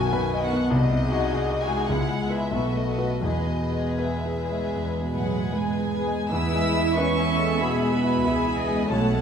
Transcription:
0.00 0.69 B1 medium
0.00 0.74 F#2 soft
0.00 0.42 D#3 soft
0.00 0.42 B3 soft
0.00 0.24 F#4 soft
0.00 0.41 F#4 soft
0.00 0.43 G#5 medium
0.13 0.63 B2 medium
0.13 0.45 B4 medium
0.33 0.65 D#5 soft
0.42 0.72 D#3 soft
0.42 0.72 B3 soft
0.42 0.72 F#4 soft
0.42 0.72 F#5 medium
0.53 0.73 B3 soft
0.70 1.87 C2 medium
0.70 1.23 C3 medium
0.70 1.60 D#5 medium
0.91 1.24 C3 soft
1.02 1.61 G#3 soft
1.02 1.61 D#4 soft
1.02 1.60 F#4 soft
1.02 1.59 G#4 soft
1.12 1.44 F#4 soft
1.32 1.82 C3 medium
1.32 1.64 G#4 soft
1.51 1.83 D#5 soft
1.60 1.91 G#3 soft
1.60 1.92 D#4 soft
1.60 1.90 F#4 soft
1.60 1.90 G#4 soft
1.60 1.92 G#5 medium
1.68 1.90 G#3 soft
1.89 2.50 C#2 soft
1.89 2.43 C#3 medium
1.89 2.20 G#3 soft
1.89 2.21 B3 soft
1.89 2.20 E4 soft
1.89 2.20 G#4 soft
1.89 2.31 F#5 medium
2.09 2.44 G#3 soft
2.21 2.53 G#3 soft
2.21 2.52 B3 soft
2.21 2.53 E4 soft
2.21 2.53 G#4 soft
2.29 2.50 E4 soft
2.29 2.50 B4 soft
2.29 2.76 E5 medium
2.51 3.21 B1 soft
2.51 3.13 B2 soft
2.51 2.87 A3 soft
2.51 2.87 B3 soft
2.51 2.86 F#4 soft
2.51 2.86 B4 soft
2.73 3.13 A3 soft
2.73 3.21 D#5 soft
2.87 3.24 A3 soft
2.87 3.23 B3 soft
2.87 3.23 F#4 soft
2.87 3.23 B4 soft
2.98 3.21 F#4 soft
2.98 3.21 B4 soft
3.21 4.71 E2 soft
3.21 3.89 E2 soft
3.21 3.61 G#3 soft
3.21 3.62 B3 soft
3.21 3.61 G#4 soft
3.21 3.62 B4 soft
3.21 3.99 D#5 medium
3.47 3.90 B2 soft
3.62 4.38 G#3 soft
3.62 4.39 B3 soft
3.62 4.37 G#4 soft
3.62 4.38 B4 soft
3.72 4.15 G#4 soft
3.98 5.11 E2 soft
3.98 4.40 B4 soft
3.98 5.52 E5 soft
4.25 4.66 G#4 soft
4.40 5.13 G#3 soft
4.40 5.13 B3 soft
4.40 5.13 G#4 soft
4.40 5.13 B4 soft
4.51 4.91 G#3 soft
4.75 6.27 E2 soft
5.01 5.42 B2 soft
5.14 5.52 A2 soft
5.14 5.49 F#3 soft
5.14 5.50 F#3 soft
5.14 5.91 G#3 soft
5.14 5.91 B3 soft
5.14 5.92 G#4 soft
5.14 5.92 B4 soft
5.14 5.50 F#5 soft
5.26 5.67 G#4 soft
5.53 6.32 G#2 soft
5.53 6.32 G#3 soft
5.53 5.96 B4 soft
5.53 6.32 G#5 soft
5.79 6.22 G#4 soft
5.93 6.31 G#3 soft
5.93 6.31 B3 soft
5.93 6.31 G#4 soft
5.93 6.31 B4 soft
6.07 6.32 G#3 soft
6.31 7.57 E2 soft
6.31 8.21 E2 soft
6.31 6.97 E4 medium
6.31 6.98 E4 medium
6.31 6.93 G#4 soft
6.31 6.93 B4 soft
6.31 6.93 E5 soft
6.31 6.98 E6 medium
6.55 6.89 G#3 soft
6.76 7.10 E4 soft
6.96 7.60 C#4 medium
6.96 7.61 C#4 medium
6.96 7.28 B4 medium
6.96 7.31 B4 soft
6.96 8.25 E5 medium
6.96 7.60 G#5 soft
6.96 7.59 C#6 medium
7.17 7.52 E4 soft
7.30 7.60 A4 soft
7.38 7.73 G#3 soft
7.60 7.95 B2 soft
7.60 8.89 B3 medium
7.60 8.90 B3 medium
7.60 7.93 G#4 soft
7.60 8.88 G#5 soft
7.60 8.90 B5 soft
7.81 8.16 G#3 soft
7.94 8.25 F#4 soft
8.03 8.37 E4 soft
8.24 8.90 C#2 soft
8.24 8.90 G#4 soft
8.24 8.59 B4 soft
8.24 8.57 E5 soft
8.46 8.81 E4 soft
8.58 8.90 D#5 soft
8.67 8.90 G#3 soft
8.90 9.21 B1 soft
8.90 9.21 B1 medium
8.90 9.21 A3 medium
8.90 9.21 A3 soft
8.90 9.21 A4 soft
8.90 9.21 C#5 soft
8.90 9.21 F#5 soft
8.90 9.21 A5 medium
9.12 9.21 A3 soft

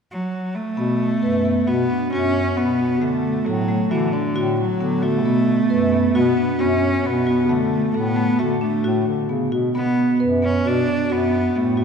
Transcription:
0.11 0.56 F#3 medium
0.54 1.68 A3 medium
0.77 1.15 B2 medium
0.77 1.17 B3 medium
1.22 1.59 F#2 medium
1.22 1.42 B4 medium
1.45 1.65 B3 medium
1.67 1.86 B2 medium
1.67 2.11 B3 medium
1.67 1.87 F#4 medium
1.90 2.10 D4 medium
2.12 2.49 F#2 medium
2.12 2.58 C#4 medium
2.12 2.52 F#4 medium
2.57 3.04 B2 medium
2.57 3.03 B3 medium
2.57 2.77 B3 medium
2.80 2.99 F#4 medium
3.01 3.39 D3 medium
3.01 3.47 A3 medium
3.01 3.41 A3 medium
3.45 3.83 A2 medium
3.45 3.92 F#3 medium
3.45 3.66 A4 medium
3.68 3.88 A3 medium
3.91 4.10 D3 medium
3.91 4.14 E3 medium
3.91 4.11 F#4 medium
4.12 4.58 D3 medium
4.12 4.33 D4 medium
4.36 4.73 A2 medium
4.36 4.74 F#4 medium
4.59 5.03 F#3 medium
4.80 5.26 D3 medium
4.80 5.00 B3 medium
5.02 6.17 A3 medium
5.02 5.22 F#4 medium
5.24 5.62 B2 medium
5.24 5.64 B3 medium
5.70 6.07 F#2 medium
5.70 5.90 B4 medium
5.92 6.12 B3 medium
6.15 6.33 B2 medium
6.15 6.62 B3 medium
6.15 6.34 F#4 medium
6.37 6.57 D4 medium
6.59 6.97 F#2 medium
6.59 7.07 C#4 medium
6.59 6.98 F#4 medium
7.04 7.51 B2 medium
7.04 7.24 B3 medium
7.04 7.52 B3 medium
7.27 7.47 F#4 medium
7.49 7.87 D3 medium
7.49 7.88 A3 medium
7.49 7.97 A3 medium
7.94 8.31 A2 medium
7.94 8.41 B3 medium
7.94 8.14 A4 medium
8.16 8.36 A3 medium
8.39 8.58 D3 medium
8.39 8.61 A3 medium
8.39 8.59 F#4 medium
8.61 9.26 A3 medium
8.61 8.81 D4 medium
8.84 9.03 A2 medium
8.84 9.24 F#4 medium
9.07 9.28 D3 medium
9.29 9.51 C#3 medium
9.29 9.49 B3 medium
9.52 9.76 B2 medium
9.52 9.72 F#4 medium
9.75 10.13 B2 medium
9.75 10.14 B3 medium
9.75 10.17 B3 medium
10.20 10.58 F#2 medium
10.20 10.40 B4 medium
10.42 10.62 B3 medium
10.42 10.68 C#4 medium
10.65 10.84 B2 medium
10.65 11.13 D4 medium
10.65 10.85 F#4 medium
10.88 11.08 D4 medium
11.10 11.48 F#2 medium
11.10 11.57 B3 medium
11.10 11.49 F#4 medium
11.55 11.85 A2 medium
11.55 11.85 A3 medium
11.55 11.75 B3 medium
11.77 11.85 F#4 medium

